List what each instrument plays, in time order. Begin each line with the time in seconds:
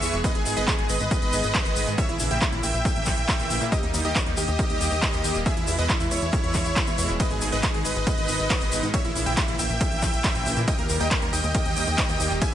Already playing: supersaw synth E5 C#6
0.02 analog synth bass E2, supersaw synth E3 G#3 B3 G#4, open hi-hat, shaker
0.13 analog synth bass E1, closed hi-hat, shaker
0.24 supersaw synth D#3 G#3 B3 G#4 B4 D#5, kick, closed hi-hat, shaker
0.35 analog synth bass G#1, supersaw synth D#3 G#3 B3 G#4, closed hi-hat
0.46 analog synth bass G#1, supersaw synth D#3 G#3 B3 G#4, open hi-hat, shaker
0.57 analog synth bass G#1, supersaw synth B4 D#5, closed hi-hat, shaker
0.67 supersaw synth D#3 G#3 B3 G#4, kick, clap, closed hi-hat, shaker
0.78 analog synth bass G#1, supersaw synth G#4, closed hi-hat
0.89 analog synth bass G#1, supersaw synth B4 D#5, open hi-hat, shaker
1.00 analog synth bass G#1, closed hi-hat, shaker
1.11 supersaw synth D#3 G#3 B3 G#4, kick, closed hi-hat, shaker
1.22 analog synth bass G#1, supersaw synth D#3 G#3 B3 G#4, closed hi-hat
1.33 analog synth bass G#1, open hi-hat, shaker
1.43 analog synth bass G#1, closed hi-hat, shaker
1.55 supersaw synth D#3 G#3 B3 G#4, kick, clap, closed hi-hat, shaker
1.65 analog synth bass G#1, supersaw synth D#3 G#3 B3 G#4, closed hi-hat, shaker
1.76 analog synth bass G#1, supersaw synth D#3 G#3 B3 G#4, open hi-hat, shaker
1.87 analog synth bass G#2, closed hi-hat, shaker
1.98 supersaw synth C#3 E3 A#3 E4 C#5 E5, kick, closed hi-hat, shaker
2.09 analog synth bass A#1, supersaw synth C#3 E3 A#3 E4, closed hi-hat
2.19 analog synth bass A#1, supersaw synth C#3 E3 A#3 E4, open hi-hat, shaker
2.31 analog synth bass A#1, supersaw synth E5 G5, closed hi-hat, shaker
2.41 supersaw synth C#3 E3 A#3 E4, kick, clap, closed hi-hat, shaker
2.52 analog synth bass A#1, supersaw synth E4, closed hi-hat
2.63 analog synth bass A#1, supersaw synth E5 G5, open hi-hat, shaker
2.74 analog synth bass A#1, closed hi-hat, shaker
2.85 supersaw synth C#3 E3 A#3 E4, kick, closed hi-hat, shaker
2.96 analog synth bass A#1, supersaw synth C#3 E3 A#3 E4, closed hi-hat
3.06 analog synth bass A#1, kick, clap, open hi-hat, shaker
3.18 analog synth bass A#1, closed hi-hat, shaker
3.28 supersaw synth C#3 E3 A#3 E4, kick, clap, closed hi-hat, shaker
3.39 analog synth bass A#1, supersaw synth C#3 E3 A#3 E4, closed hi-hat, shaker
3.50 analog synth bass A#1, supersaw synth C#3 E3 A#3 E4, open hi-hat, shaker
3.61 analog synth bass A#2, closed hi-hat, shaker
3.72 supersaw synth D#3 G3 A#3 G4 D#5, kick, closed hi-hat, shaker
3.83 analog synth bass D#2, supersaw synth D#3 G3 A#3 D#4 G4, closed hi-hat
3.94 analog synth bass D#2, supersaw synth D#3 G3 A#3 D#4 G4, open hi-hat, shaker
4.05 analog synth bass D#2, supersaw synth G4 D#5, closed hi-hat, shaker
4.16 supersaw synth D#3 G3 A#3 D#4 G4, kick, clap, closed hi-hat, shaker
4.26 analog synth bass D#2, supersaw synth D#4, closed hi-hat
4.37 analog synth bass D#2, supersaw synth G4 D#5, open hi-hat, shaker
4.48 analog synth bass D#2, closed hi-hat, shaker
4.59 supersaw synth D#3 G3 A#3 G4, kick, closed hi-hat, shaker
4.70 analog synth bass D#2, supersaw synth D#3 G3 A#3 G4, closed hi-hat
4.81 analog synth bass D#2, open hi-hat, shaker
4.92 analog synth bass D#2, closed hi-hat, shaker
5.02 supersaw synth D#3 G3 A#3 G4, kick, clap, closed hi-hat, shaker
5.13 analog synth bass D#2, supersaw synth D#3 G3 A#3 G4, closed hi-hat, shaker
5.24 analog synth bass D#2, supersaw synth D#3 G3 A#3 G4, open hi-hat, shaker
5.34 analog synth bass D#1, closed hi-hat, shaker
5.46 supersaw synth B2 E3 G#3 E4 G#4 E5, kick, closed hi-hat, shaker
5.57 analog synth bass E2, supersaw synth B2 E3 G#3 E4, closed hi-hat
5.67 analog synth bass E2, supersaw synth B2 E3 G#3 E4, open hi-hat, shaker
5.78 analog synth bass E2, supersaw synth B4 D#5, closed hi-hat, shaker
5.89 supersaw synth B2 E3 G#3 E4, kick, clap, closed hi-hat, shaker
6.00 analog synth bass E2, supersaw synth E4, closed hi-hat, shaker
6.11 analog synth bass E2, supersaw synth E4 C#5, open hi-hat, shaker
6.21 analog synth bass E2, closed hi-hat, shaker
6.33 supersaw synth B2 E3 G#3 E4, kick, closed hi-hat, shaker
6.44 analog synth bass E2, supersaw synth B2 E3 G#3 E4, closed hi-hat
6.54 analog synth bass E2, kick, clap, open hi-hat, shaker
6.65 analog synth bass E2, closed hi-hat, shaker
6.76 supersaw synth B2 E3 G#3 E4, kick, clap, closed hi-hat, shaker
6.87 analog synth bass E2, supersaw synth B2 E3 G#3 E4, closed hi-hat, shaker
6.98 analog synth bass E2, supersaw synth B2 E3 G#3 E4, open hi-hat, shaker
7.08 analog synth bass E1, closed hi-hat, shaker
7.20 supersaw synth B2 D#3 G#3 D#4 B4 D#5, kick, closed hi-hat, ride, shaker
7.30 analog synth bass G#1, supersaw synth B2 D#3 G#3 D#4 G#4, closed hi-hat
7.41 analog synth bass G#1, supersaw synth B2 D#3 G#3 D#4 G#4, open hi-hat, shaker
7.52 analog synth bass G#1, supersaw synth B4 D#5, closed hi-hat, shaker
7.63 supersaw synth B2 D#3 G#3 D#4 G#4, kick, clap, closed hi-hat, ride, shaker
7.74 analog synth bass G#1, supersaw synth G#4, closed hi-hat
7.85 analog synth bass G#1, supersaw synth B4 D#5, open hi-hat, shaker
7.96 analog synth bass G#1, closed hi-hat, shaker
8.07 supersaw synth B2 D#3 G#3 D#4, kick, closed hi-hat, ride, shaker
8.18 analog synth bass G#1, supersaw synth B2 D#3 G#3 D#4, closed hi-hat
8.28 analog synth bass G#1, open hi-hat, shaker
8.39 analog synth bass G#1, closed hi-hat, shaker
8.50 supersaw synth B2 D#3 G#3 D#4, kick, clap, closed hi-hat, ride, shaker
8.60 analog synth bass G#1, supersaw synth B2 D#3 G#3 D#4, closed hi-hat, shaker
8.72 analog synth bass G#1, supersaw synth B2 D#3 G#3 D#4, open hi-hat, shaker
8.83 analog synth bass G#2, closed hi-hat, shaker
8.94 supersaw synth C#3 E3 A#3 E4 C#5 E5, kick, closed hi-hat, ride, shaker
9.05 analog synth bass A#1, supersaw synth C#3 E3 A#3 E4, closed hi-hat
9.15 analog synth bass A#1, supersaw synth C#3 E3 A#3 E4, open hi-hat, shaker
9.26 analog synth bass A#1, supersaw synth E5 G5, closed hi-hat, shaker
9.37 supersaw synth C#3 E3 A#3 E4, kick, clap, closed hi-hat, ride, shaker
9.48 analog synth bass A#1, supersaw synth E4, closed hi-hat
9.59 analog synth bass A#1, supersaw synth E5 G5, open hi-hat, shaker
9.70 analog synth bass A#1, closed hi-hat, shaker
9.81 supersaw synth C#3 E3 A#3 E4, kick, closed hi-hat, ride, shaker
9.91 analog synth bass A#1, supersaw synth C#3 E3 A#3 E4, closed hi-hat
10.02 analog synth bass A#1, kick, clap, open hi-hat, shaker
10.13 analog synth bass A#1, closed hi-hat, shaker
10.24 supersaw synth C#3 E3 A#3 E4, kick, clap, closed hi-hat, ride, shaker
10.35 analog synth bass A#1, supersaw synth C#3 E3 A#3 E4, closed hi-hat, shaker
10.46 analog synth bass A#1, supersaw synth C#3 E3 A#3 E4, open hi-hat, shaker
10.57 analog synth bass A#2, closed hi-hat, shaker
10.68 supersaw synth D#3 G3 A#3 G4 D#5 G5, kick, closed hi-hat, ride, shaker
10.79 analog synth bass D#2, supersaw synth D#3 G3 A#3 G4 A#4, closed hi-hat
10.89 analog synth bass D#2, supersaw synth D#3 G3 A#3 G4 A#4, open hi-hat, shaker
11.00 analog synth bass D#2, supersaw synth D#5 G5, closed hi-hat, shaker
11.11 supersaw synth D#3 G3 A#3 G4 A#4, kick, clap, closed hi-hat, ride, shaker
11.22 analog synth bass D#2, supersaw synth A#4, closed hi-hat
11.33 analog synth bass D#2, supersaw synth D#5 G5, open hi-hat, shaker
11.43 analog synth bass D#2, closed hi-hat, shaker
11.55 supersaw synth D#3 G3 A#3 G4, kick, closed hi-hat, ride, shaker
11.65 analog synth bass D#2, supersaw synth D#3 G3 A#3 G4, closed hi-hat
11.76 analog synth bass D#2, open hi-hat, shaker
11.87 analog synth bass D#2, closed hi-hat, shaker
11.98 supersaw synth D#3 G3 A#3 G4, kick, clap, closed hi-hat, ride, shaker
12.09 analog synth bass D#2, supersaw synth D#3 G3 A#3 G4, closed hi-hat, shaker
12.20 analog synth bass D#2, supersaw synth D#3 G3 A#3 G4, open hi-hat, shaker
12.31 analog synth bass D#1, closed hi-hat, shaker
12.42 supersaw synth E3 G#3 B3 G#4 E5 G#5, kick, closed hi-hat, ride, shaker